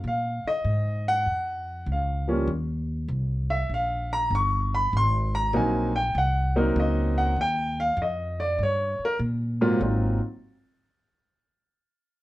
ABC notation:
X:1
M:4/4
L:1/8
Q:"Swing" 1/4=98
K:Ebdor
V:1 name="Grand piano"
f e2 g3 f2 | z3 _f =f b d' _c' | c' b a =g _g B e g | =g f e =d _d B z2 |
z8 |]
V:2 name="Grand piano"
z6 z [F,=G,B,D] | z8 | z2 [G,B,CE] z2 [G,B,CE]3 | z6 z [A,,G,B,CF] |
[G,B,CEF] z6 z |]
V:3 name="Upright bass" clef=bass
B,, z A,,2 F,,2 D,,2 | E,,2 C,,2 B,,,2 =G,,,2 | A,,,2 B,,,2 C,,2 D,,2 | E,,2 F,,2 =G,, z B,,2 |
A,,, z6 z |]